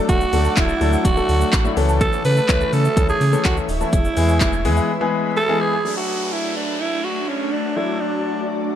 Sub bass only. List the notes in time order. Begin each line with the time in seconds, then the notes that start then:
0.09 D1
0.33 D2
0.57 D1
0.81 D2
1.05 D1
1.29 D2
1.53 A1
1.77 C#2
2.25 C#3
2.49 C#2
2.73 C#3
2.97 C#2
3.21 C#3
3.45 C#2
3.69 D1
3.93 E1
4.17 E2
4.41 E1
4.65 E2